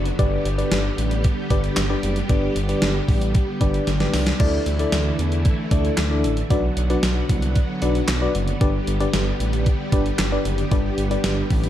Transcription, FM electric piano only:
0.19 D4 G4 B4 D5
0.58 D4 G4 B4 D5
1.51 D4 G4 B4 D5
1.90 D4 G4 B4 D5
2.29 D4 G4 B4 D5
2.69 D4 G4 B4 D5
3.61 D4 G4 B4 D5
4.00 D4 G4 B4 D5
4.40 D4 E4 A4 D5
4.79 D4 E4 A4 D5
5.71 D4 E4 A4 D5
6.11 D4 E4 A4 D5
6.50 D4 F#4 B4 D5
6.90 D4 F#4 B4 D5
7.82 D4 F#4 B4 D5
8.22 D4 F#4 B4 D5
8.61 D4 G4 B4 D5
9.00 D4 G4 B4 D5
9.93 D4 G4 B4 D5
10.32 D4 G4 B4 D5
10.72 D4 G4 B4 D5
11.11 D4 G4 B4 D5

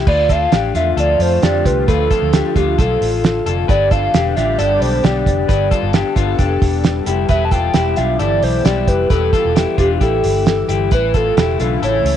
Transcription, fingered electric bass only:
0.07 D2
0.52 A1
0.74 E2
0.97 D2
1.19 F2
1.42 F2
1.65 C2
1.88 D2
2.22 D2
2.56 D2
2.79 B1
3.01 A1
3.46 F1
3.69 G1
4.14 E1
4.36 A1
4.59 G1
4.81 B1
5.04 B1
5.26 F1
5.49 G1
5.83 G1
6.16 G1
6.39 F1
6.62 E1
7.07 F1
7.29 E1
7.75 E1
7.97 B1
8.19 G1
8.42 B1
8.65 B1
8.87 F1
9.10 E1
9.45 E1
9.78 E1
10.01 A1
10.24 G1
10.69 G1
10.92 A1
11.37 E1
11.59 B1
11.82 A1
12.04 C#2

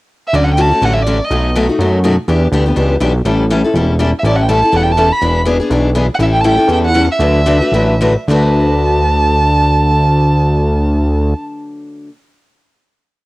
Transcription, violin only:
0.27 E5
0.35 D5
0.44 F#5
0.53 G5
0.61 A5
0.85 F#5
0.93 E5
1.02 D5
1.24 D#5
4.19 E5
4.27 D5
4.36 F#5
4.42 G5
4.51 A5
4.76 F#5
4.83 G5
4.91 A5
5.12 B5
6.15 F#5
6.23 E5
6.32 G5
6.40 A5
6.48 G5
6.73 G5
6.86 F#5
7.11 E5
8.30 A5

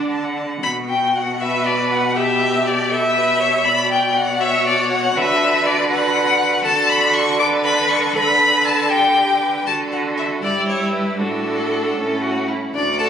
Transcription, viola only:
Already playing: D4
0.63 F#4
2.15 G4
3.66 F#4
6.65 F#4
7.40 B4
8.15 A4
8.90 G4
9.67 F#4
10.42 E4
11.19 D4
11.96 C#4
12.74 F#4

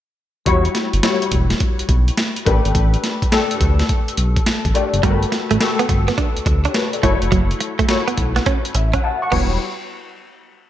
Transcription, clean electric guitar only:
5.03 G3
5.32 muted clean electric guitar stroke
5.51 A3
5.79 B3
5.89 muted clean electric guitar stroke
6.08 B3
6.18 D4
6.47 muted clean electric guitar stroke
6.65 D4
7.03 A3
7.32 F#3
7.61 muted clean electric guitar stroke
7.79 A3
8.08 B3
8.18 muted clean electric guitar stroke
8.36 B3
8.46 C#4
8.75 muted clean electric guitar stroke
8.94 C#4
9.32 B3

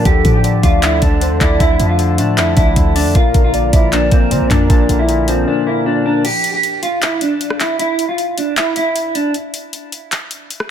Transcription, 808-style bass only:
0.05 D2
0.25 A2
0.63 D2
1.02 D2
1.31 E2
1.41 D2
1.60 D2
1.80 F2
2.18 A2
2.38 F2
2.57 C2
2.76 D2
3.05 F2
3.15 A#1
3.34 A#1
3.73 A#1
4.12 A#1
4.31 D3
4.41 A#1
4.51 F2
4.70 A#1
4.89 A#1

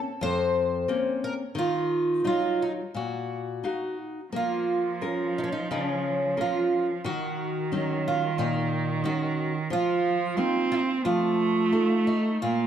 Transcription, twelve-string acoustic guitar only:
0.23 C5
1.24 A#4
1.59 F4
2.27 F4
2.62 D#4
2.97 F#4
4.36 F4
5.38 D#4
5.44 C#4
5.52 D#4
5.72 C#4
6.41 F4
7.06 F#4
8.08 F4
8.39 D#4
9.05 F#4
9.73 F4
10.72 D#4
11.05 F4
12.07 D#4
12.42 F4

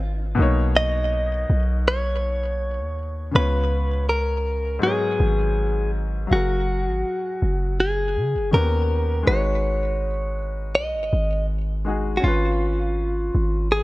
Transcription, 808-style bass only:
Already playing: G#1
0.39 B1
1.50 B1
2.79 D#2
3.35 C#2
5.20 G#1
6.31 F#1
6.87 G#1
7.42 F#1
8.16 C#3
8.35 F#1
8.53 D#2
9.27 G#1
10.75 B1
10.94 G#1
11.13 G#1
12.24 G#1
13.35 G#1

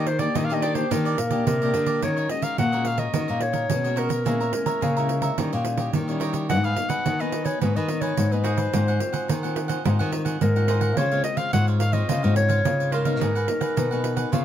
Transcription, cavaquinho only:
0.06 muted cavaquinho stroke
0.19 G4 D5 D#5
0.34 D4 G4 D5 D#5
0.49 G4 D5 D#5
0.62 D4 G4 D5 D#5
0.91 D4 G4 D5 D#5
1.05 G4 D5 D#5
1.18 muted cavaquinho stroke
1.30 G4 D5 D#5
1.62 G4 D5 D#5
1.74 D4 G4 D5 D#5
1.86 G4 D5 D#5
2.02 F#4 A#4 C#5 D#5
2.17 A#4 C#5 D#5
2.29 muted cavaquinho stroke
2.42 A#4 C#5 D#5
2.58 F#4 A#4 C#5 D#5
2.72 A#4 C#5 D#5
2.97 A#4 C#5 D#5
3.13 F#4 A#4 C#5 D#5
3.28 A#4 C#5 D#5
3.40 muted cavaquinho stroke
3.53 A#4 C#5 D#5
3.84 A#4 C#5 D#5
3.96 F#4 A#4 C#5 D#5
4.09 A#4 C#5 D#5
4.25 G#4 C#5 E5 A#5
4.40 C#5 E5 A#5
4.53 muted cavaquinho stroke
4.66 C#5 E5 A#5
4.81 G#4 C#5 E5 A#5
4.97 C#5 E5 A#5
5.22 C#5 E5 A#5
5.38 D#4 G4 C#5 D#5
5.53 G4 C#5 D#5
5.65 muted cavaquinho stroke
5.78 G4 C#5 D#5
6.08 G4 C#5 D#5
6.20 D#4 G4 C#5 D#5
6.33 G4 C#5 D#5
6.49 F#4 G#4 B4 D#5
6.63 G#4 B4 D#5
6.76 muted cavaquinho stroke
6.89 G#4 B4 D#5
7.05 F#4 G#4 B4 D#5
7.19 G#4 B4 D#5
7.45 G#4 B4 D#5
7.61 F#4 G#4 B4 D#5
7.76 G#4 B4 D#5
7.89 muted cavaquinho stroke
8.01 G#4 B4 D#5
8.32 G#4 B4 D#5
8.44 F#4 G#4 B4 D#5
8.57 G#4 B4 D#5
8.73 D#4 G#4 C5 F#5
8.88 G#4 C5 F#5
9.00 muted cavaquinho stroke
9.13 G#4 C5 F#5
9.28 D#4 G#4 C5 F#5
9.43 G#4 C5 F#5
9.68 G#4 C5 F#5
9.84 D#4 G#4 C5 F#5
9.99 G#4 C5 F#5
10.12 muted cavaquinho stroke
10.25 G#4 C5 F#5
10.56 G#4 C5 F#5
10.68 D#4 G#4 C5 F#5
10.81 G#4 C5 F#5
10.97 F4 C5 C#5 F5
11.12 C5 C#5 F5
11.24 muted cavaquinho stroke
11.37 C5 C#5 F5
11.53 F4 C5 C#5 F5
11.67 C5 C#5 F5
11.92 C5 C#5 F5
12.09 F4 C5 C#5 F5
12.23 C5 C#5 F5
12.36 muted cavaquinho stroke
12.49 C5 C#5 F5
12.80 C5 C#5 F5
12.92 F4 C5 C#5 F5
13.05 C5 C#5 F5
13.21 D#4 G#4 B4 F#5
13.35 G#4 B4 F#5
13.48 muted cavaquinho stroke
13.61 G#4 B4 F#5
13.76 D#4 G#4 B4 F#5
13.91 G#4 B4 F#5
14.16 G#4 B4 F#5
14.32 F4 B4 C#5 F5

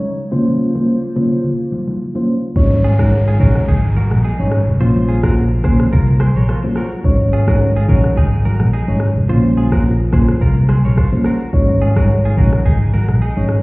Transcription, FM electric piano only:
Already playing: G#3 C#4 D#4 C#5
0.31 A#3 C#4 F4 C5
0.75 A#3 C#4 F4 C5
1.16 A#3 C#4 F4 C5
2.15 A#3 C#4 F4 C5
2.56 G#3 C#4 D#4 C#5
2.99 G#3 C#4 D#4 C#5
3.40 G#3 C#4 D#4 C#5
4.39 G#3 C#4 D#4 C#5
4.80 A#3 C#4 F4 C5
5.23 A#3 C#4 F4 C5
5.64 A#3 C#4 F4 C5
6.64 A#3 C#4 F4 C5
7.04 G#3 C#4 D#4 C#5
7.48 G#3 C#4 D#4 C#5
7.88 G#3 C#4 D#4 C#5
8.88 G#3 C#4 D#4 C#5
9.29 A#3 C#4 F4 C5
9.72 A#3 C#4 F4 C5
10.13 A#3 C#4 F4 C5
11.12 A#3 C#4 F4 C5
11.53 G#3 C#4 D#4 C#5
11.96 G#3 C#4 D#4 C#5
12.37 G#3 C#4 D#4 C#5
13.37 G#3 C#4 D#4 C#5

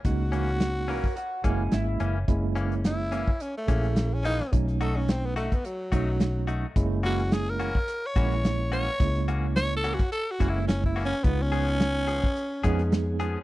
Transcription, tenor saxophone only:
0.06 F#4
2.86 E4
3.42 C#4
3.57 A3
4.14 C#4
4.25 D#4
4.81 A4
4.96 C#4
5.10 C4
5.26 B3
5.36 A3
5.53 B3
5.66 F#3
5.94 F#3
7.05 F#4
7.33 G#4
7.50 A#4
8.06 C#5
8.73 C#5
9.56 C#5
9.77 A4
9.94 F#4
10.12 A4
10.31 F#4
10.49 E4
10.67 C#4
10.86 E4
11.05 C#4
11.24 B3
11.42 C#4

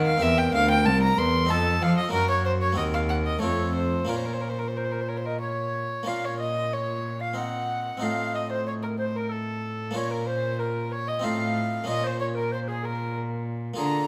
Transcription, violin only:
0.06 F5
0.22 E5
0.38 G5
0.55 F5
0.71 G5
0.85 A5
1.03 A#5
1.18 C6
1.50 A5
1.82 F5
1.98 D#5
2.13 A#4
2.30 C#5
2.45 C5
2.62 C#5
2.77 D#5
2.94 F5
3.09 F#5
3.27 D#5
3.42 C#5
3.75 C5
4.08 A#4
4.16 C5
4.25 A#4
4.33 C5
4.41 A#4
4.49 C5
4.59 A#4
4.68 C5
4.77 A#4
4.85 C5
4.91 A#4
5.01 C5
5.08 A#4
5.16 C5
5.25 A#4
5.41 C#5
6.08 F5
6.24 C#5
6.40 D#5
6.73 C#5
7.22 F5
7.38 F#5
8.03 F5
8.35 D#5
8.52 C5
8.67 C#5
8.82 A#4
8.98 C5
9.16 A#4
9.31 A4
9.96 C#5
10.12 A#4
10.26 C5
10.59 A#4
10.92 C#5
11.08 D#5
11.24 F5
11.88 D#5
12.07 C5
12.20 C#5
12.38 A#4
12.53 C5
12.69 G#4
12.85 A#4
13.78 A#5

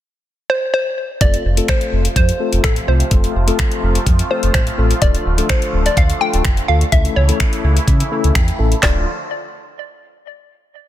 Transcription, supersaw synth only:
1.21 C3 F3 A3 F4
5.02 D3
6.93 C#3 E3 E4
8.83 D3 F3 A3 F4

